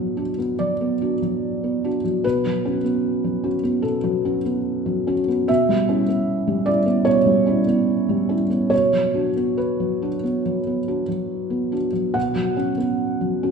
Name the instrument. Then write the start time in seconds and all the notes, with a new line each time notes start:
felt piano
Already playing: B2 F#3 B3 D4 F#4
0.17 D4 F#4
0.38 B3
0.59 F#3 D5
0.81 B3
1.01 D4 F#4
1.22 F#3
1.64 B3
1.84 D4 F#4
2.04 F#3
2.24 B2 B4
2.46 F#3
2.65 C#4 F#4
2.84 B3
3.24 F#3
3.44 C#4 F#4
3.63 B3
3.82 B2 A4
4.04 F#3
4.25 C#4 F#4
4.45 B3
4.86 F#3
5.07 C#4 F#4
5.28 B3
5.48 B2 E5
5.69 G3
5.89 C#4 E4
6.08 B3
6.47 G3
6.66 C#4 E4 D5
6.86 B3
7.05 B2 C#5
7.26 G3
7.46 C#4 E4
7.67 B3
8.09 G3
8.29 C#4 E4
8.50 B3
8.70 B2 C#5
8.93 F#3
9.14 D4 F#4
9.36 B3
9.57 B4
9.80 F#3
10.02 D4 F#4
10.23 B3
10.46 F#3
10.67 B3
10.88 D4 F#4
11.08 F#3
11.50 B3
11.72 D4 F#4
11.93 F#3
12.14 B2 F#4 F#5
12.36 F#3
12.57 C#4 F#4
12.78 B3
13.21 F#3
13.43 C#4 F#4